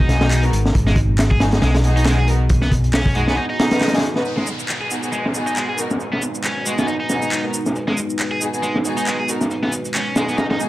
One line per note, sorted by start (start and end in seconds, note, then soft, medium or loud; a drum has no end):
0.00 4.21 G#3 medium
0.00 4.21 B3 medium
0.00 0.42 D#4 medium
0.00 4.21 D#4 medium
0.00 4.21 F#4 medium
0.00 4.23 G#4 medium
0.09 0.49 B1 loud
0.09 0.22 B3 medium
0.09 0.22 D#4 medium
0.09 0.22 F#4 medium
0.09 0.22 G#4 loud
0.09 snare soft
0.09 closed hi-hat medium
0.21 snare loud
0.31 clap loud
0.31 closed hi-hat medium
0.43 0.49 B3 medium
0.43 0.49 D#4 medium
0.43 0.49 F#4 medium
0.43 0.49 A#4 medium
0.43 closed hi-hat soft
0.53 0.70 G#1 medium
0.53 closed hi-hat medium
0.66 snare medium
0.75 1.59 G#1 loud
0.75 kick loud
0.75 closed hi-hat medium
0.87 0.96 G#3 loud
0.87 snare soft
0.96 kick medium
0.96 closed hi-hat medium
1.18 snare loud
1.18 clap loud
1.18 closed hi-hat medium
1.31 1.40 G#4 medium
1.31 kick loud
1.40 1.49 B3 medium
1.40 1.49 D#4 medium
1.40 1.49 F#4 medium
1.40 1.49 G#4 loud
1.40 snare loud
1.40 closed hi-hat medium
1.52 1.59 B3 medium
1.52 1.59 D#4 medium
1.52 1.59 F#4 medium
1.52 1.59 G#4 loud
1.52 snare medium
1.52 closed hi-hat medium
1.62 3.37 B1 loud
1.62 1.74 G#3 loud
1.62 snare loud
1.62 closed hi-hat medium
1.75 snare loud
1.75 closed hi-hat medium
1.84 2.26 B3 medium
1.84 2.26 D#4 medium
1.84 2.26 F#4 medium
1.84 2.26 G#4 loud
1.84 closed hi-hat medium
1.96 2.05 D#4 loud
1.96 closed hi-hat soft
2.06 2.17 G#3 medium
2.06 snare loud
2.06 clap loud
2.06 closed hi-hat medium
2.18 2.27 G#4 medium
2.28 2.36 B3 medium
2.28 2.36 D#4 medium
2.28 2.36 F#4 medium
2.28 2.36 A#4 medium
2.28 closed hi-hat medium
2.49 kick loud
2.49 closed hi-hat medium
2.62 2.71 B3 medium
2.62 snare soft
2.72 kick medium
2.72 closed hi-hat medium
2.84 closed hi-hat soft
2.93 3.15 C#4 medium
2.93 snare loud
2.93 clap loud
2.93 open hi-hat medium
3.06 kick loud
3.15 3.26 G#3 loud
3.15 3.26 B3 medium
3.15 3.26 D#4 medium
3.15 3.26 F#4 medium
3.15 3.26 G#4 medium
3.15 closed hi-hat medium
3.28 3.34 B3 medium
3.28 3.37 B3 medium
3.28 3.34 D#4 medium
3.28 3.34 F#4 medium
3.28 3.34 G#4 loud
3.28 snare soft
3.37 3.44 D#4 loud
3.50 3.92 D#4 medium
3.59 3.67 B3 medium
3.59 3.67 D#4 medium
3.59 3.67 F#4 medium
3.59 3.67 G#4 medium
3.59 snare loud
3.59 closed hi-hat medium
3.71 3.82 B3 medium
3.71 3.82 D#4 medium
3.71 3.82 F#4 medium
3.71 3.82 B4 medium
3.71 snare loud
3.71 closed hi-hat medium
3.81 snare medium
3.81 clap loud
3.81 closed hi-hat medium
3.88 snare medium
3.88 closed hi-hat medium
3.93 4.04 B3 medium
3.93 4.04 D#4 medium
3.93 4.04 F#4 medium
3.93 4.04 G#4 medium
3.93 snare medium
3.93 closed hi-hat medium
3.98 snare loud
3.98 closed hi-hat medium
4.03 closed hi-hat medium
4.15 4.22 B3 loud
4.15 4.22 D#4 medium
4.15 4.22 F#4 medium
4.15 4.22 B4 loud
4.15 snare soft
4.25 10.69 G#3 medium
4.25 10.69 B3 medium
4.25 10.69 D#4 medium
4.25 10.69 F#4 medium
4.25 10.69 B4 medium
4.25 closed hi-hat medium
4.25 downlifter medium
4.25 shaker soft
4.37 4.46 G#3 medium
4.37 snare soft
4.47 closed hi-hat medium
4.47 shaker medium
4.59 shaker soft
4.69 clap loud
4.69 closed hi-hat medium
4.69 shaker soft
4.81 4.90 G#4 medium
4.90 4.99 B3 medium
4.90 4.99 D#4 medium
4.90 4.99 F#4 medium
4.90 4.99 G#4 medium
4.90 closed hi-hat medium
4.90 shaker medium
5.03 5.09 B3 medium
5.03 5.09 D#4 medium
5.03 5.09 F#4 medium
5.03 5.09 G#4 medium
5.03 closed hi-hat soft
5.03 shaker soft
5.12 5.24 G#3 medium
5.12 closed hi-hat medium
5.12 shaker soft
5.26 snare soft
5.34 5.76 B3 medium
5.34 5.76 D#4 medium
5.34 5.76 F#4 medium
5.34 5.76 G#4 loud
5.34 closed hi-hat medium
5.34 shaker medium
5.47 5.55 D#4 medium
5.47 closed hi-hat soft
5.47 shaker soft
5.56 5.67 G#3 medium
5.56 clap loud
5.56 closed hi-hat medium
5.56 shaker soft
5.69 5.78 G#4 medium
5.78 5.86 B3 medium
5.78 5.86 D#4 medium
5.78 5.86 F#4 medium
5.78 5.86 A#4 medium
5.78 closed hi-hat medium
5.78 shaker medium
5.91 snare soft
5.91 shaker soft
6.00 closed hi-hat medium
6.00 shaker soft
6.13 6.22 B3 medium
6.13 snare soft
6.22 closed hi-hat medium
6.22 shaker medium
6.35 closed hi-hat soft
6.35 shaker soft
6.44 6.65 C#4 medium
6.44 clap loud
6.44 open hi-hat medium
6.44 shaker soft
6.66 6.77 G#3 medium
6.66 6.77 B3 medium
6.66 6.77 D#4 medium
6.66 6.77 F#4 medium
6.66 6.77 G#4 medium
6.66 closed hi-hat medium
6.66 shaker medium
6.78 6.85 B3 medium
6.78 6.87 B3 medium
6.78 6.85 D#4 medium
6.78 6.85 F#4 medium
6.78 6.85 G#4 loud
6.78 snare soft
6.78 shaker soft
6.88 6.94 D#4 medium
6.88 closed hi-hat medium
6.88 shaker soft
7.00 7.43 D#4 medium
7.09 7.23 B3 medium
7.09 7.23 D#4 medium
7.09 7.23 F#4 medium
7.09 7.23 G#4 medium
7.09 snare soft
7.09 closed hi-hat medium
7.09 shaker medium
7.22 shaker soft
7.32 clap loud
7.32 closed hi-hat medium
7.32 shaker soft
7.44 7.50 B3 medium
7.44 7.50 D#4 medium
7.44 7.50 F#4 medium
7.44 7.50 A#4 medium
7.44 closed hi-hat soft
7.54 closed hi-hat medium
7.54 shaker medium
7.66 snare soft
7.66 shaker soft
7.76 closed hi-hat medium
7.76 shaker soft
7.88 7.97 G#3 medium
7.88 snare soft
7.97 closed hi-hat medium
7.97 shaker medium
8.10 shaker soft
8.19 clap loud
8.19 closed hi-hat medium
8.19 shaker soft
8.31 8.41 G#4 medium
8.41 8.49 B3 medium
8.41 8.49 D#4 medium
8.41 8.49 F#4 medium
8.41 8.49 G#4 medium
8.41 closed hi-hat medium
8.41 shaker medium
8.53 8.60 B3 medium
8.53 8.60 D#4 medium
8.53 8.60 F#4 medium
8.53 8.60 G#4 medium
8.53 closed hi-hat soft
8.53 shaker soft
8.62 8.75 G#3 loud
8.62 closed hi-hat medium
8.62 shaker soft
8.76 snare soft
8.85 9.26 B3 medium
8.85 9.26 D#4 medium
8.85 9.26 F#4 medium
8.85 9.26 G#4 loud
8.85 closed hi-hat medium
8.85 shaker medium
8.97 9.06 D#4 loud
8.97 closed hi-hat soft
8.97 shaker soft
9.07 9.18 G#3 medium
9.07 clap loud
9.07 closed hi-hat medium
9.07 shaker soft
9.19 9.28 G#4 medium
9.28 9.37 B3 medium
9.28 9.37 D#4 medium
9.28 9.37 F#4 medium
9.28 9.37 A#4 medium
9.28 closed hi-hat medium
9.28 shaker medium
9.41 snare soft
9.41 shaker soft
9.51 closed hi-hat medium
9.51 shaker soft
9.63 9.72 B3 medium
9.63 snare soft
9.72 closed hi-hat medium
9.72 shaker medium
9.85 closed hi-hat soft
9.85 shaker soft
9.94 10.15 C#4 medium
9.94 clap loud
9.94 open hi-hat medium
9.94 shaker soft
10.16 10.27 G#3 medium
10.16 10.27 B3 medium
10.16 10.27 D#4 medium
10.16 10.27 F#4 medium
10.16 10.27 G#4 medium
10.16 snare medium
10.16 closed hi-hat medium
10.16 shaker medium
10.28 10.35 B3 medium
10.28 10.38 B3 medium
10.28 10.35 D#4 medium
10.28 10.35 F#4 medium
10.28 10.35 G#4 loud
10.28 shaker soft
10.38 10.45 D#4 medium
10.38 snare medium
10.38 closed hi-hat medium
10.38 swell medium
10.38 shaker soft
10.50 10.59 D#4 medium
10.50 snare loud
10.50 closed hi-hat medium
10.60 10.69 B3 medium
10.60 10.69 D#4 medium
10.60 10.69 F#4 medium
10.60 10.69 G#4 medium
10.60 shaker medium